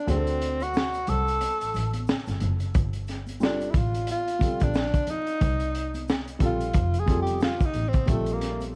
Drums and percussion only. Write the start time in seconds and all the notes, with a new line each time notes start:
0.08 closed hi-hat, shaker
0.27 closed hi-hat, shaker
0.41 closed hi-hat, shaker
0.60 closed hi-hat, high conga, shaker
0.74 snare, high conga, shaker
0.94 closed hi-hat, shaker
1.07 closed hi-hat, low conga, shaker
1.27 closed hi-hat, shaker
1.41 closed hi-hat, high conga, shaker
1.61 closed hi-hat, shaker
1.74 closed hi-hat, low conga, shaker
1.93 closed hi-hat, high conga, shaker
2.07 snare, shaker
2.26 snare, closed hi-hat, shaker
2.40 closed hi-hat, high conga, low conga, shaker
2.60 closed hi-hat, shaker
2.75 kick, closed hi-hat, shaker
2.93 closed hi-hat, shaker
3.07 snare, closed hi-hat, shaker
3.27 closed hi-hat, high conga, shaker
3.40 snare, high conga, shaker
3.61 closed hi-hat, shaker
3.74 kick, closed hi-hat, low conga, shaker
3.94 closed hi-hat, shaker
4.07 closed hi-hat, high conga, shaker
4.28 closed hi-hat, shaker
4.41 kick, closed hi-hat, low conga, shaker
4.60 kick, closed hi-hat, high conga, shaker
4.74 snare, shaker
4.94 kick, closed hi-hat, shaker
5.07 closed hi-hat, high conga, low conga, shaker
5.27 closed hi-hat, shaker
5.41 kick, closed hi-hat, shaker
5.60 closed hi-hat, shaker
5.75 closed hi-hat, shaker
5.94 closed hi-hat, high conga, shaker
6.08 snare, high conga, shaker
6.28 closed hi-hat, shaker
6.40 kick, closed hi-hat, low conga, shaker
6.61 closed hi-hat, shaker
6.73 kick, closed hi-hat, high conga, shaker
6.94 closed hi-hat, shaker
7.07 kick, closed hi-hat, low conga, shaker
7.27 closed hi-hat, high conga, shaker
7.40 snare, shaker
7.60 kick, closed hi-hat, shaker
7.74 closed hi-hat, high conga, low conga, shaker
7.93 kick, closed hi-hat, shaker
8.07 kick, closed hi-hat, shaker
8.26 closed hi-hat, shaker
8.41 snare, closed hi-hat, shaker
8.60 closed hi-hat, high conga, shaker